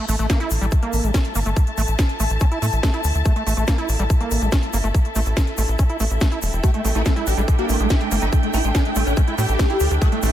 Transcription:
Already playing: string section E4
0.01 string section A4
0.08 analog synth bass A1, acid bass A3, string section E5, open hi-hat, shaker
0.19 analog synth bass A1, acid bass A3, closed hi-hat, shaker
0.30 acid bass A#3, kick, snare, closed hi-hat, shaker
0.40 acid bass E4, string section A5, closed hi-hat
0.50 analog synth bass A1, open hi-hat, shaker
0.61 analog synth bass A1, acid bass G3, closed hi-hat, shaker
0.71 kick, closed hi-hat, shaker
0.83 acid bass A#3, closed hi-hat
0.93 analog synth bass A1, open hi-hat, shaker
1.04 analog synth bass A1, acid bass G3, closed hi-hat, shaker
1.14 acid bass C#4, kick, snare, closed hi-hat, shaker
1.25 closed hi-hat
1.35 analog synth bass G1, acid bass A#3, open hi-hat, shaker
1.46 analog synth bass G1, acid bass A3, closed hi-hat, shaker
1.56 kick, closed hi-hat, shaker
1.67 closed hi-hat
1.78 analog synth bass A1, acid bass A3, open hi-hat, shaker
1.87 analog synth bass A1, closed hi-hat, shaker
1.99 kick, snare, closed hi-hat, shaker
2.09 closed hi-hat
2.20 analog synth bass A1, acid bass A3, open hi-hat, shaker
2.30 analog synth bass A1, closed hi-hat, shaker
2.40 acid bass C#4, kick, closed hi-hat, shaker
2.52 acid bass E4, closed hi-hat
2.62 analog synth bass A2, acid bass A3, open hi-hat, shaker
2.73 analog synth bass A1, closed hi-hat, shaker
2.83 acid bass A3, kick, snare, closed hi-hat, shaker
2.94 acid bass E4, closed hi-hat
3.04 analog synth bass D2, open hi-hat, shaker
3.14 analog synth bass D2, closed hi-hat, shaker
3.25 acid bass A3, kick, closed hi-hat, shaker
3.36 acid bass A3, closed hi-hat
3.47 analog synth bass A1, acid bass A3, open hi-hat, shaker
3.57 analog synth bass A1, acid bass A3, closed hi-hat, shaker
3.67 acid bass A#3, kick, snare, closed hi-hat, shaker
3.78 acid bass E4, closed hi-hat
3.89 analog synth bass A1, open hi-hat, shaker
3.99 analog synth bass A1, acid bass G3, closed hi-hat, shaker
4.10 kick, closed hi-hat, shaker
4.21 acid bass A#3, closed hi-hat
4.31 analog synth bass A1, open hi-hat, shaker
4.42 analog synth bass A1, acid bass G3, closed hi-hat, shaker
4.52 acid bass C#4, kick, snare, closed hi-hat, shaker
4.63 closed hi-hat
4.73 analog synth bass G1, acid bass A#3, open hi-hat, shaker
4.84 analog synth bass G1, acid bass A3, closed hi-hat, shaker
4.94 kick, closed hi-hat, shaker
5.05 closed hi-hat
5.15 analog synth bass A1, acid bass A3, open hi-hat, shaker
5.26 analog synth bass A1, closed hi-hat, shaker
5.37 kick, snare, closed hi-hat, shaker
5.47 closed hi-hat
5.58 analog synth bass A1, acid bass A3, open hi-hat, shaker
5.68 analog synth bass A1, closed hi-hat, shaker
5.79 acid bass C#4, kick, closed hi-hat, shaker
5.90 acid bass E4, closed hi-hat
6.00 analog synth bass A1, acid bass A3, open hi-hat, shaker
6.11 analog synth bass A1, closed hi-hat, shaker
6.21 acid bass A3, kick, snare, closed hi-hat, shaker
6.32 acid bass E4, closed hi-hat
6.42 analog synth bass E1, open hi-hat, shaker
6.50 analog synth bass E1, string section G5, closed hi-hat, shaker
6.63 acid bass A3, ambient pad D4, digital synth lead G4, kick, closed hi-hat, shaker
6.74 digital synth lead A3, acid bass A3, closed hi-hat
6.85 analog synth bass A1, digital synth lead A3, acid bass A3, open hi-hat, shaker
6.95 analog synth bass A1, acid bass A3, digital synth lead E4, closed hi-hat, shaker
7.06 digital synth lead A3, acid bass A3, kick, snare, closed hi-hat, shaker
7.16 digital synth lead A3, acid bass E4, closed hi-hat
7.27 analog synth bass A1, digital synth lead G4, open hi-hat, shaker
7.37 analog synth bass A1, acid bass G3, digital synth lead A3, closed hi-hat, shaker
7.48 digital synth lead A3, kick, closed hi-hat, shaker
7.59 acid bass A#3, digital synth lead G4, closed hi-hat
7.69 analog synth bass A1, digital synth lead A3, open hi-hat, shaker
7.79 analog synth bass A1, acid bass G3, digital synth lead A3, closed hi-hat, shaker
7.90 acid bass C#4, digital synth lead E4, kick, snare, closed hi-hat, shaker
8.01 digital synth lead A3, closed hi-hat
8.11 analog synth bass G1, digital synth lead A3, acid bass A#3, open hi-hat, shaker
8.21 analog synth bass G1, acid bass A3, digital synth lead E4, closed hi-hat, shaker
8.33 digital synth lead A3, kick, closed hi-hat, shaker
8.43 digital synth lead A3, closed hi-hat
8.54 analog synth bass A1, acid bass A3, digital synth lead E4, open hi-hat, shaker
8.64 analog synth bass A1, digital synth lead A3, closed hi-hat, shaker
8.75 digital synth lead D4, kick, snare, closed hi-hat, shaker
8.85 digital synth lead A3, closed hi-hat
8.96 analog synth bass A1, digital synth lead A3, acid bass A3, open hi-hat, shaker
9.06 analog synth bass A1, digital synth lead D4, closed hi-hat, shaker
9.17 digital synth lead A3, acid bass C#4, kick, closed hi-hat, shaker
9.28 digital synth lead A3, acid bass E4, closed hi-hat
9.38 analog synth bass A2, acid bass A3, digital synth lead G4, open hi-hat, shaker
9.49 analog synth bass A1, closed hi-hat, shaker
9.59 acid bass A3, kick, snare, closed hi-hat, shaker
9.70 acid bass E4, closed hi-hat
9.80 analog synth bass D2, open hi-hat, shaker
9.91 analog synth bass D2, closed hi-hat, shaker
10.02 acid bass A3, digital synth lead A4, kick, closed hi-hat, shaker
10.12 acid bass A3, digital synth lead A3, closed hi-hat
10.22 analog synth bass A1, acid bass A3, digital synth lead A3, open hi-hat, shaker

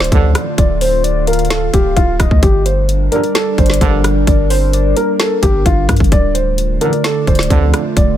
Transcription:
Already playing: 808-style bass D1, ambient pad D3 A3 F4, grand piano C5, soft synth lead D5
0.00 snare, closed hi-hat
0.12 brass ensemble A1 F2 D3, 808-style bass D2, kick, closed hi-hat
0.35 cross-stick, closed hi-hat
0.58 808-style bass D1, grand piano D5, kick, closed hi-hat
0.81 soft synth lead C5, grand piano C5, open hi-hat
1.04 soft synth lead D5, closed hi-hat
1.27 grand piano A#4, soft synth lead F5, closed hi-hat
1.33 closed hi-hat
1.39 closed hi-hat
1.45 closed hi-hat
1.50 grand piano A4, snare, closed hi-hat
1.73 808-style bass D1, grand piano G4, kick, closed hi-hat
1.97 808-style bass D1, grand piano F4, kick, closed hi-hat
2.20 808-style bass C1, soft synth lead D#5, kick, cross-stick, closed hi-hat
2.31 808-style bass D2, kick
2.43 808-style bass G1, ambient pad G3 D4 A#4, grand piano G4, kick, closed hi-hat
2.66 grand piano C5, closed hi-hat
2.89 closed hi-hat
3.12 brass ensemble A#1 G2 D3, grand piano A#4, soft synth lead D5, closed hi-hat
3.24 closed hi-hat
3.35 grand piano A4, snare, closed hi-hat
3.58 808-style bass G1, grand piano C5, kick, closed hi-hat
3.66 snare, closed hi-hat
3.74 closed hi-hat
3.81 808-style bass G1, brass ensemble A#1 G2 D3, kick, closed hi-hat
4.04 cross-stick, closed hi-hat
4.27 808-style bass G1, grand piano D5, kick, closed hi-hat
4.50 grand piano C5, soft synth lead C5, open hi-hat
4.73 soft synth lead D5, closed hi-hat
4.96 soft synth lead A#4, grand piano A#4, closed hi-hat
5.20 grand piano A4, snare, closed hi-hat
5.42 808-style bass G1, grand piano G4, kick, closed hi-hat
5.66 808-style bass G1, grand piano F4, kick, closed hi-hat
5.89 808-style bass G2, kick, cross-stick, closed hi-hat
5.97 808-style bass G1, kick, closed hi-hat
6.04 closed hi-hat
6.12 808-style bass D1, ambient pad D3 A3 F4, grand piano D5, kick, closed hi-hat
6.34 grand piano C5, closed hi-hat
6.58 closed hi-hat
6.81 brass ensemble A1 F2 D3, grand piano A#4, soft synth lead D5, closed hi-hat
6.93 closed hi-hat
7.04 grand piano A4, snare, closed hi-hat
7.27 808-style bass D1, grand piano C5, kick, closed hi-hat
7.35 snare, closed hi-hat
7.43 closed hi-hat
7.50 brass ensemble A1 F2 D3, 808-style bass D2, kick, closed hi-hat
7.74 cross-stick, closed hi-hat
7.96 808-style bass D1, grand piano D5, kick, closed hi-hat

